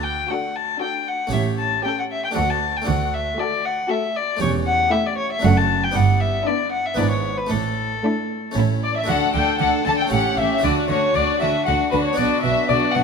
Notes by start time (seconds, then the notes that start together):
Already playing: D2 D3 A3 D4 F#4
0.03 G5
0.30 D4 F#4 A4 F#5
0.56 A5
0.80 D4 F#4 A4 G5
1.08 F#5
1.27 A3 C#4 G4
1.32 A1 A2 E5
1.59 A5
1.84 C#4 G4 A4 G5
1.99 F#5
2.12 E5
2.24 G5
2.31 D2 A3 D4 F#4
2.35 D2 A3 F#4 A4 F#5
2.50 A5
2.77 G5
2.82 A3 D4 F#4
2.87 D2 F#5
3.14 E5
3.39 A3 F#4 A4 D5
3.65 F#5
3.89 A3 F#4 A4 E5
4.16 D5
4.37 A3 C#4 G4
4.41 E1 E2 C#5
4.67 F#5
4.91 A3 E4 G4 E5
5.06 D5
5.18 C#5
5.32 E5
5.39 A3 D4 F#4
5.43 F#1 F#2 A3 D4 F#4 F#5
5.57 A5
5.84 G5
5.91 G1 G2 B3 D4 E4
5.95 G2 F#5
6.20 E5
6.47 B3 D4 E4 D5
6.72 F#5
6.86 E5
6.94 G#1 G#2 B3 D4 E4 D5
6.98 G#2 D4 E4
7.11 C#5
7.38 B4
7.47 A1 A2 A3 D4 E4 A4
7.51 A2
8.04 A3 D4 E4
8.51 A3 C#4 E4
8.55 A1 A2 A3 C#4 E4
8.82 D5
8.96 E5
9.04 A3 D4 F#4
9.08 D2 D3 D4 A4 F#5
9.34 D2 D3 D4 A4 G5
9.59 D2 D3 D4 A4 F#5
9.84 D2 D3 D4 A4 A5
9.98 G5
10.07 A3 C#4 G4
10.12 A1 A2 C#4 G4 F#5
10.37 A1 A2 C#4 G4 E5
10.58 A3 D4 F#4
10.63 D2 D3 D4 F#4 D5
10.89 D2 D3 D4 F#4 C#5
11.14 D2 D3 D4 F#4 D5
11.40 D2 D3 D4 F#4 E5
11.65 D2 D3 D4 F#4 F#5
11.91 D2 D3 D4 F#4 B4
12.05 C#5
12.13 B3 D4 F#4 D5
12.17 B1 B2 D4 F#4
12.42 B1 B2 D4 E5
12.46 F#4
12.68 B1 B2 D4 D5
12.72 F#4
12.92 B1 B2 D4 F#5
12.98 F#4